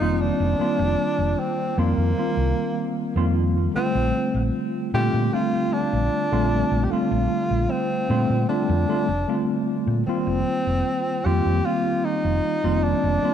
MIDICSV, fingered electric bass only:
0, 0, Header, 1, 3, 480
1, 0, Start_track
1, 0, Key_signature, -2, "major"
1, 0, Tempo, 789474
1, 364, Time_signature, 4, 2, 24, 8
1, 8110, End_track
2, 0, Start_track
2, 0, Title_t, "Fingered electric bass"
2, 0, Program_c, 0, 33
2, 4, Note_on_c, 0, 29, 74
2, 178, Note_off_c, 0, 29, 0
2, 243, Note_on_c, 0, 29, 96
2, 330, Note_off_c, 0, 29, 0
2, 481, Note_on_c, 0, 29, 98
2, 569, Note_off_c, 0, 29, 0
2, 720, Note_on_c, 0, 29, 80
2, 809, Note_off_c, 0, 29, 0
2, 1080, Note_on_c, 0, 41, 89
2, 1169, Note_off_c, 0, 41, 0
2, 1200, Note_on_c, 0, 41, 90
2, 1289, Note_off_c, 0, 41, 0
2, 1440, Note_on_c, 0, 36, 98
2, 1529, Note_off_c, 0, 36, 0
2, 1920, Note_on_c, 0, 41, 90
2, 2229, Note_off_c, 0, 41, 0
2, 2401, Note_on_c, 0, 34, 100
2, 2489, Note_off_c, 0, 34, 0
2, 2641, Note_on_c, 0, 34, 82
2, 2729, Note_off_c, 0, 34, 0
2, 3002, Note_on_c, 0, 46, 94
2, 3090, Note_off_c, 0, 46, 0
2, 3124, Note_on_c, 0, 46, 95
2, 3211, Note_off_c, 0, 46, 0
2, 3605, Note_on_c, 0, 34, 80
2, 3691, Note_off_c, 0, 34, 0
2, 3843, Note_on_c, 0, 34, 77
2, 4018, Note_off_c, 0, 34, 0
2, 4082, Note_on_c, 0, 34, 95
2, 4170, Note_off_c, 0, 34, 0
2, 4325, Note_on_c, 0, 34, 92
2, 4411, Note_off_c, 0, 34, 0
2, 4564, Note_on_c, 0, 34, 78
2, 4651, Note_off_c, 0, 34, 0
2, 4924, Note_on_c, 0, 46, 96
2, 5011, Note_off_c, 0, 46, 0
2, 5044, Note_on_c, 0, 46, 94
2, 5131, Note_off_c, 0, 46, 0
2, 5285, Note_on_c, 0, 41, 98
2, 5371, Note_off_c, 0, 41, 0
2, 5523, Note_on_c, 0, 29, 93
2, 5610, Note_off_c, 0, 29, 0
2, 6002, Note_on_c, 0, 46, 91
2, 6090, Note_off_c, 0, 46, 0
2, 6243, Note_on_c, 0, 29, 98
2, 6330, Note_off_c, 0, 29, 0
2, 6484, Note_on_c, 0, 29, 80
2, 6571, Note_off_c, 0, 29, 0
2, 6844, Note_on_c, 0, 41, 93
2, 6931, Note_off_c, 0, 41, 0
2, 6964, Note_on_c, 0, 41, 91
2, 7051, Note_off_c, 0, 41, 0
2, 7444, Note_on_c, 0, 29, 83
2, 7531, Note_off_c, 0, 29, 0
2, 7683, Note_on_c, 0, 29, 78
2, 7857, Note_off_c, 0, 29, 0
2, 7925, Note_on_c, 0, 29, 94
2, 8011, Note_off_c, 0, 29, 0
2, 8110, End_track
3, 0, Start_track
3, 0, Title_t, "Muted fingered electric bass strokes"
3, 361, Note_on_c, 9, 29, 42
3, 422, Note_off_c, 9, 29, 0
3, 2282, Note_on_c, 9, 29, 41
3, 2343, Note_off_c, 9, 29, 0
3, 6122, Note_on_c, 9, 29, 41
3, 6183, Note_off_c, 9, 29, 0
3, 8110, End_track
0, 0, End_of_file